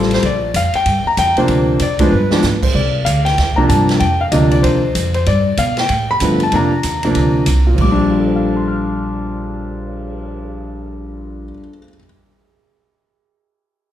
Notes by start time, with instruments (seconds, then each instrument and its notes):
Already playing: upright bass A1, grand piano G3 C4 F4 A4
0.02 snare
0.11 grand piano C5, snare, ride
0.23 upright bass A#1, grand piano D5, kick, ride
0.54 upright bass F2, grand piano F5, kick, hi-hat pedal, ride
0.74 grand piano G5, muted upright bass stroke, ride
0.86 upright bass G2, kick, ride
1.05 grand piano A#5, muted upright bass stroke
1.17 upright bass F2, grand piano G5, kick, hi-hat pedal, ride
1.36 grand piano C3 F3 A#3 D4 C5, muted upright bass stroke, ride
1.48 upright bass D2, kick, ride
1.79 upright bass F2, grand piano D5, kick, hi-hat pedal, ride
1.99 grand piano F3 G#3 B3 D4 C5, kick, ride
2.12 upright bass G2, grand piano B4
2.31 grand piano F3 G#3 B3 D4, snare
2.42 upright bass G#2, snare, hi-hat pedal
2.63 grand piano C5, kick, crash
2.75 upright bass C2, grand piano D5, kick
3.05 upright bass D2, grand piano F5, kick, hi-hat pedal, ride
3.25 grand piano G5, snare, ride
3.38 upright bass D#2, kick, snare, ride
3.56 grand piano C3 F3 A#3 D4 A#5, muted upright bass stroke, kick
3.69 upright bass G2, grand piano A5, hi-hat pedal, ride
3.89 snare, ride
4.00 upright bass F2, grand piano G5, kick, ride
4.21 grand piano F5
4.32 upright bass D2, grand piano C3 F3 A#3 D4 D#5, kick, hi-hat pedal, ride
4.51 grand piano D5, ride
4.63 upright bass D#2, grand piano C5, kick, ride
4.95 upright bass F2, kick, hi-hat pedal, ride
5.14 grand piano C5, ride
5.26 upright bass G2, grand piano D5, kick, ride
5.57 upright bass B2, grand piano F5, kick, hi-hat pedal, ride
5.77 grand piano G5, snare, ride
5.89 upright bass A2, kick, ride
6.11 grand piano B5
6.20 upright bass G2, grand piano D3 F3 A3 B3, kick, hi-hat pedal, ride
6.40 grand piano A5, ride
6.52 upright bass F2, grand piano C3 F3 A#3 D4 A#5, kick, ride
6.83 upright bass D#2, kick, hi-hat pedal, ride
7.03 grand piano C3 F3 A#3 D4, ride
7.15 upright bass D2, kick, ride
7.46 upright bass C2, kick, hi-hat pedal, ride
7.67 grand piano A#2
7.75 upright bass A#1, grand piano F3, kick, crash
7.81 grand piano G3 D6
7.92 grand piano D4
7.98 cymbal swell
8.11 grand piano F4
8.19 grand piano A4
8.27 grand piano C5
8.36 grand piano F5
8.46 grand piano A5
8.56 grand piano C6
8.68 grand piano F6